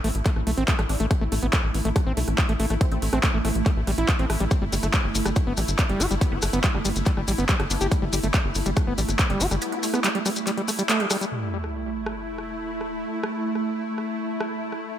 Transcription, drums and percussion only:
0.04 open hi-hat
0.15 closed hi-hat
0.26 kick, clap, closed hi-hat
0.36 cross-stick
0.47 open hi-hat
0.57 closed hi-hat
0.68 kick, clap, closed hi-hat
0.79 cross-stick, closed hi-hat
0.89 open hi-hat
1.00 closed hi-hat
1.11 kick, cross-stick, closed hi-hat
1.32 open hi-hat
1.43 closed hi-hat
1.53 kick, cross-stick, clap, closed hi-hat
1.74 open hi-hat
1.85 closed hi-hat
1.96 kick, cross-stick, closed hi-hat
2.17 open hi-hat
2.28 cross-stick, closed hi-hat
2.38 kick, clap, closed hi-hat
2.49 closed hi-hat
2.60 open hi-hat
2.70 cross-stick, closed hi-hat
2.81 kick, closed hi-hat
2.92 closed hi-hat
3.02 open hi-hat
3.13 cross-stick, closed hi-hat
3.23 kick, clap, closed hi-hat
3.45 cross-stick, open hi-hat
3.55 closed hi-hat
3.66 kick, clap, closed hi-hat
3.87 cross-stick, open hi-hat
3.98 closed hi-hat
4.09 kick, clap, closed hi-hat
4.19 closed hi-hat
4.30 cross-stick, open hi-hat
4.40 closed hi-hat
4.51 kick, closed hi-hat, maracas
4.72 open hi-hat, maracas
4.83 cross-stick, closed hi-hat, maracas
4.93 kick, clap, closed hi-hat, maracas
5.15 open hi-hat, maracas
5.26 cross-stick, closed hi-hat, maracas
5.36 kick, closed hi-hat, maracas
5.57 cross-stick, open hi-hat, maracas
5.68 closed hi-hat, maracas
5.79 kick, clap, closed hi-hat, maracas
5.89 closed hi-hat
6.00 cross-stick, open hi-hat, maracas
6.11 closed hi-hat, maracas
6.21 kick, closed hi-hat, maracas
6.42 cross-stick, open hi-hat, maracas
6.53 closed hi-hat, maracas
6.63 kick, clap, closed hi-hat, maracas
6.75 cross-stick
6.85 open hi-hat, maracas
6.96 closed hi-hat, maracas
7.06 kick, clap, closed hi-hat, maracas
7.17 cross-stick
7.28 open hi-hat, maracas
7.38 closed hi-hat, maracas
7.49 kick, clap, closed hi-hat, maracas
7.60 cross-stick, closed hi-hat
7.70 open hi-hat, maracas
7.81 closed hi-hat, maracas
7.91 kick, cross-stick, closed hi-hat, maracas
8.13 open hi-hat, maracas
8.23 closed hi-hat, maracas
8.34 kick, cross-stick, clap, closed hi-hat, maracas
8.55 open hi-hat, maracas
8.66 closed hi-hat, maracas
8.76 kick, cross-stick, closed hi-hat, maracas
8.98 open hi-hat, maracas
9.09 cross-stick, closed hi-hat, maracas
9.19 kick, clap, closed hi-hat, maracas
9.30 closed hi-hat
9.40 open hi-hat, maracas
9.51 cross-stick, closed hi-hat, maracas
9.61 closed hi-hat, maracas
9.72 closed hi-hat
9.83 open hi-hat, maracas
9.94 cross-stick, closed hi-hat, maracas
10.04 clap, closed hi-hat, maracas
10.15 closed hi-hat
10.26 cross-stick, open hi-hat, maracas
10.36 closed hi-hat, maracas
10.47 clap, closed hi-hat, maracas
10.57 closed hi-hat
10.68 cross-stick, open hi-hat, maracas
10.79 closed hi-hat, maracas
10.89 clap, closed hi-hat, maracas
11.00 closed hi-hat
11.10 cross-stick, open hi-hat, maracas
11.21 closed hi-hat, maracas
11.64 cross-stick
12.06 cross-stick
12.38 cross-stick
12.81 cross-stick
13.23 cross-stick
13.55 cross-stick
13.98 cross-stick
14.40 cross-stick
14.72 cross-stick

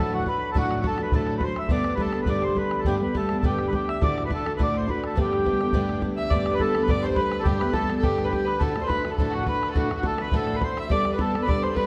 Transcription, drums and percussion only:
0.13 bodhran
0.20 bodhran
0.26 bodhran
0.55 bodhran
0.71 bodhran
0.84 bodhran
0.91 bodhran
0.98 bodhran
1.12 bodhran
1.27 bodhran
1.33 bodhran
1.41 bodhran
1.56 bodhran
1.69 bodhran
1.84 bodhran
1.98 bodhran
2.06 bodhran
2.13 bodhran
2.26 bodhran
2.42 bodhran
2.49 bodhran
2.56 bodhran
2.71 bodhran
2.85 bodhran
3.15 bodhran
3.22 bodhran
3.29 bodhran
3.43 bodhran
3.59 bodhran
3.66 bodhran
3.73 bodhran
3.89 bodhran
4.02 bodhran
4.18 bodhran
4.31 bodhran
4.38 bodhran
4.46 bodhran
4.60 bodhran
4.74 bodhran
4.82 bodhran
4.88 bodhran
5.04 bodhran
5.17 bodhran
5.33 bodhran
5.46 bodhran
5.53 bodhran
5.61 bodhran
5.73 bodhran
5.89 bodhran
5.96 bodhran
6.02 bodhran
6.18 bodhran
6.31 bodhran
6.46 bodhran
6.60 bodhran
6.67 bodhran
6.75 bodhran
6.89 bodhran
7.04 bodhran
7.11 bodhran
7.16 bodhran
7.32 bodhran
7.45 bodhran
7.61 bodhran
7.73 bodhran
7.83 bodhran
7.90 bodhran
8.03 bodhran
8.18 bodhran
8.26 bodhran
8.33 bodhran
8.48 bodhran
8.61 bodhran
8.76 bodhran
8.90 bodhran
8.97 bodhran
9.05 bodhran
9.18 bodhran
9.33 bodhran
9.39 bodhran
9.47 bodhran
9.63 bodhran
9.75 bodhran
9.91 bodhran
10.03 bodhran
10.11 bodhran
10.18 bodhran
10.32 bodhran
10.47 bodhran
10.54 bodhran
10.61 bodhran
10.77 bodhran
10.90 bodhran
11.05 bodhran
11.19 bodhran
11.27 bodhran
11.35 bodhran
11.49 bodhran
11.63 bodhran
11.70 bodhran
11.76 bodhran

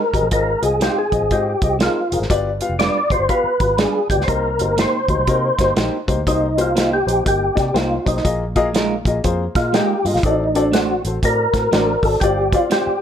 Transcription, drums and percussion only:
0.14 kick, closed hi-hat
0.31 kick, closed hi-hat
0.63 closed hi-hat
0.81 snare, closed hi-hat
1.12 kick, closed hi-hat
1.31 kick, closed hi-hat
1.62 kick, closed hi-hat
1.80 snare, closed hi-hat
2.12 closed hi-hat
2.22 snare
2.30 kick, closed hi-hat
2.61 closed hi-hat
2.80 snare, closed hi-hat
3.10 kick, closed hi-hat
3.29 kick, closed hi-hat
3.60 kick, closed hi-hat
3.78 snare, closed hi-hat
4.10 kick, closed hi-hat
4.21 snare
4.28 kick, closed hi-hat
4.59 closed hi-hat
4.78 snare, closed hi-hat
5.08 kick, closed hi-hat
5.27 kick, closed hi-hat
5.59 kick, snare, closed hi-hat
5.77 snare, closed hi-hat
6.08 kick, closed hi-hat
6.27 kick, closed hi-hat
6.58 closed hi-hat
6.77 snare, closed hi-hat
7.08 closed hi-hat
7.26 kick, closed hi-hat
7.57 kick, snare, closed hi-hat
7.76 snare, closed hi-hat
8.06 kick, closed hi-hat
8.17 snare
8.25 kick, closed hi-hat
8.56 kick, closed hi-hat
8.75 snare, closed hi-hat
9.05 kick, closed hi-hat
9.24 kick, closed hi-hat
9.55 kick, snare, closed hi-hat
9.74 snare, closed hi-hat
10.06 open hi-hat
10.16 snare
10.23 kick, closed hi-hat
10.55 closed hi-hat
10.73 snare, closed hi-hat
11.05 closed hi-hat
11.23 kick, closed hi-hat
11.54 kick, snare, closed hi-hat
11.73 snare, closed hi-hat
12.03 kick, open hi-hat
12.21 kick, closed hi-hat
12.53 kick, closed hi-hat
12.71 snare, closed hi-hat

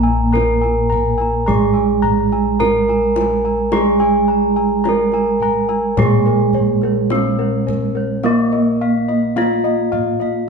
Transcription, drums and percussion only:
0.09 kendang slap
0.35 kendang high
0.64 kendang slap
0.92 kendang low
1.20 kendang slap
1.49 kendang low
1.76 kendang slap
2.04 kendang low
2.32 kendang slap
2.61 kendang high, kendang low
2.88 kendang slap
3.16 kendang high
3.72 kendang high
4.00 kendang slap
4.57 kendang slap
4.85 kendang high
5.12 kendang slap
5.40 kendang low
5.69 kendang slap
5.97 kendang high, kendang low
6.26 kendang slap
6.53 kendang low
6.82 kendang slap
7.10 kendang high
7.68 kendang low
8.23 kendang high
8.53 kendang slap
9.09 kendang slap
9.37 kendang high
9.65 kendang slap
9.93 kendang low
10.21 kendang slap

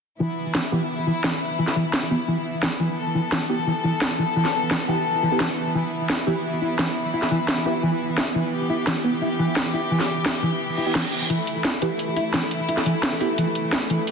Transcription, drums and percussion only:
0.55 snare
1.24 snare
1.68 snare
1.93 snare
2.63 snare
3.32 snare
4.02 snare
4.45 snare
4.71 snare
5.40 snare
6.10 snare
6.79 snare
7.22 snare
7.48 snare
8.18 snare
8.87 snare
9.56 snare
10.00 snare
10.26 snare
10.95 snare
11.30 closed hi-hat
11.47 closed hi-hat
11.65 snare, closed hi-hat
11.82 closed hi-hat
11.99 closed hi-hat
12.17 closed hi-hat
12.34 snare, closed hi-hat
12.51 closed hi-hat
12.69 closed hi-hat
12.77 snare
12.86 closed hi-hat
13.03 snare, closed hi-hat
13.21 closed hi-hat
13.38 closed hi-hat
13.55 closed hi-hat
13.73 snare, closed hi-hat
13.90 closed hi-hat
14.07 closed hi-hat

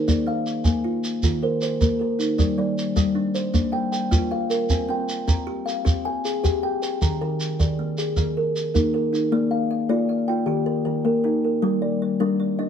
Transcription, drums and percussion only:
0.08 shekere
0.46 shekere
0.65 shekere
1.04 shekere
1.23 shekere
1.61 shekere
1.81 shekere
2.20 shekere
2.39 shekere
2.78 shekere
2.97 shekere
3.35 shekere
3.54 shekere
3.93 shekere
4.12 shekere
4.51 shekere
4.70 shekere
5.09 shekere
5.28 shekere
5.68 shekere
5.86 shekere
6.25 shekere
6.45 shekere
6.83 shekere
7.02 shekere
7.40 shekere
7.60 shekere
7.98 shekere
8.17 shekere
8.56 shekere
8.75 shekere
9.14 shekere

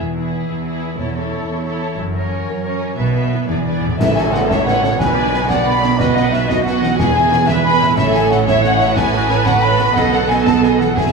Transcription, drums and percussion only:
4.00 concert bass drum, snare, crash, tam-tam
4.18 snare
4.34 snare
4.51 concert bass drum, snare
4.68 snare
4.84 snare
5.00 concert bass drum, snare
5.34 snare
5.50 concert bass drum, snare
5.83 snare
6.00 concert bass drum, snare
6.17 snare
6.33 snare
6.50 concert bass drum, snare
6.67 snare
6.83 snare
7.00 concert bass drum, snare
7.33 snare
7.48 concert bass drum, snare
7.81 snare
7.98 concert bass drum, snare, crash
8.14 snare
8.31 snare
8.48 concert bass drum, snare
8.64 snare
8.80 snare
8.96 concert bass drum, snare
9.30 snare
9.46 concert bass drum, snare
9.79 snare
9.96 concert bass drum, snare
10.13 snare
10.30 snare
10.47 concert bass drum, snare
10.63 snare
10.80 snare
10.97 concert bass drum, snare

